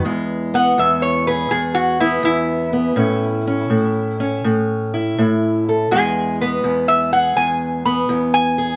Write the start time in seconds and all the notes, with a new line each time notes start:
0.05 E2 G#3
0.54 B3 F#5
0.78 E2 E5
1.02 C#5
1.27 G#4 B4
1.51 E2 G#4
1.75 F#4
2.00 B3 E4
2.23 E2 E4
2.73 B3
2.96 A2 C#4
3.47 C#4
3.70 A2
4.20 C#4
4.44 A2
4.94 E4
5.18 A2
5.69 A4
5.91 E2 G#3 G#4
6.41 B3 B4
6.64 E2
6.88 E5
7.13 G#4 F#5
7.36 E2 G#5
7.86 B3 B5
8.09 E2
8.34 G#5
8.58 G#4